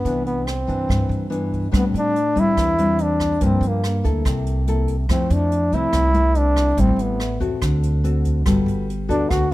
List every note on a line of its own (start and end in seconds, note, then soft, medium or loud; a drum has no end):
0.00 0.26 B3 medium
0.05 0.64 C2 medium
0.05 0.87 C3 soft
0.05 0.46 E3 soft
0.05 0.47 B3 soft
0.05 0.47 D4 medium
0.05 kick medium
0.05 closed hi-hat soft
0.26 0.48 B3 medium
0.26 closed hi-hat soft
0.47 1.52 C4 medium
0.47 cross-stick medium
0.47 closed hi-hat soft
0.67 0.88 G2 medium
0.67 1.27 E3 medium
0.67 1.28 D4 medium
0.67 kick soft
0.67 closed hi-hat soft
0.88 1.70 G2 soft
0.88 1.08 G2 medium
0.88 kick medium
0.88 cross-stick medium
0.88 closed hi-hat soft
1.09 1.68 G2 medium
1.09 closed hi-hat soft
1.30 1.69 E3 medium
1.30 1.69 B3 soft
1.30 1.69 D4 medium
1.30 closed hi-hat soft
1.53 kick soft
1.53 closed hi-hat soft
1.71 2.54 A2 medium
1.71 1.93 A2 medium
1.71 2.14 G3 medium
1.71 2.14 C4 soft
1.71 2.14 D4 medium
1.71 kick medium
1.71 cross-stick medium
1.71 closed hi-hat medium
1.76 1.85 B3 medium
1.94 2.33 A2 medium
1.94 2.41 D4 loud
1.94 closed hi-hat soft
2.16 closed hi-hat soft
2.35 2.56 E2 medium
2.35 2.74 G3 soft
2.35 2.75 C4 medium
2.35 2.75 D4 medium
2.35 kick soft
2.35 closed hi-hat soft
2.40 3.04 E4 loud
2.57 3.37 E2 medium
2.57 3.39 E3 soft
2.57 kick medium
2.57 cross-stick medium
2.57 closed hi-hat medium
2.78 3.38 G3 medium
2.78 3.38 C4 medium
2.78 3.38 D4 medium
2.78 closed hi-hat soft
2.98 closed hi-hat soft
3.02 3.46 D4 medium
3.20 kick soft
3.20 cross-stick soft
3.20 closed hi-hat soft
3.41 4.23 G2 medium
3.41 3.60 G2 medium
3.41 3.83 F3 medium
3.41 3.83 A#3 soft
3.41 3.69 C4 medium
3.41 3.83 D4 medium
3.41 kick medium
3.41 closed hi-hat medium
3.61 4.00 G2 medium
3.61 closed hi-hat soft
3.68 4.07 A#3 medium
3.84 cross-stick medium
3.84 closed hi-hat soft
4.04 4.24 D2 medium
4.04 4.64 A#3 medium
4.04 4.64 E4 soft
4.04 4.64 A4 medium
4.04 kick soft
4.04 closed hi-hat soft
4.25 5.05 C2 loud
4.25 5.08 C3 medium
4.25 kick medium
4.25 cross-stick medium
4.25 closed hi-hat medium
4.46 closed hi-hat soft
4.67 4.94 A#3 medium
4.67 4.95 E4 medium
4.67 4.95 A4 medium
4.67 closed hi-hat soft
4.88 kick soft
4.88 closed hi-hat soft
5.09 5.29 F2 loud
5.09 5.91 F3 medium
5.09 5.69 A3 medium
5.09 5.70 C4 medium
5.09 5.35 C4 medium
5.09 5.69 E4 medium
5.09 kick medium
5.09 cross-stick medium
5.09 closed hi-hat medium
5.30 5.69 F2 loud
5.30 5.75 D4 medium
5.30 closed hi-hat soft
5.51 closed hi-hat soft
5.72 5.92 C2 medium
5.72 6.11 A3 medium
5.72 6.11 C4 medium
5.72 6.39 E4 loud
5.72 6.12 E4 medium
5.72 kick soft
5.72 closed hi-hat soft
5.93 6.73 C2 medium
5.93 6.75 C3 medium
5.93 kick medium
5.93 cross-stick medium
5.93 closed hi-hat medium
6.14 6.74 A3 medium
6.14 6.74 C4 medium
6.14 6.74 E4 medium
6.14 closed hi-hat soft
6.35 6.82 D4 loud
6.35 closed hi-hat soft
6.56 kick soft
6.56 cross-stick medium
6.56 closed hi-hat soft
6.77 6.96 A1 loud
6.77 7.59 A2 medium
6.77 7.19 G3 medium
6.77 7.19 C4 medium
6.77 7.03 C4 medium
6.77 7.19 E4 medium
6.77 kick medium
6.77 closed hi-hat medium
6.96 7.36 A1 medium
6.96 closed hi-hat soft
7.02 7.42 B3 medium
7.20 cross-stick medium
7.20 closed hi-hat soft
7.40 7.60 E2 medium
7.40 8.00 C4 medium
7.40 8.00 F#4 medium
7.40 8.00 A4 medium
7.40 kick soft
7.40 closed hi-hat soft
7.61 8.41 D2 loud
7.61 8.43 D3 medium
7.61 kick soft
7.61 cross-stick medium
7.61 closed hi-hat medium
7.83 closed hi-hat soft
8.04 8.42 C4 medium
8.04 8.42 F#4 medium
8.04 8.43 A4 medium
8.04 closed hi-hat soft
8.25 kick soft
8.25 closed hi-hat soft
8.45 8.65 G1 loud
8.45 9.27 G3 medium
8.45 8.87 B3 medium
8.45 8.88 F#4 soft
8.45 8.88 A4 medium
8.45 kick medium
8.45 cross-stick medium
8.45 closed hi-hat medium
8.66 9.05 G1 medium
8.66 closed hi-hat soft
8.90 closed hi-hat soft
9.08 9.28 D2 medium
9.08 9.47 B3 soft
9.08 9.31 D4 medium
9.08 9.47 F#4 medium
9.08 9.47 A4 medium
9.08 kick soft
9.08 closed hi-hat soft
9.30 9.54 D2 loud
9.30 9.54 D3 medium
9.30 9.54 F#4 medium
9.30 kick medium
9.30 cross-stick medium
9.30 closed hi-hat medium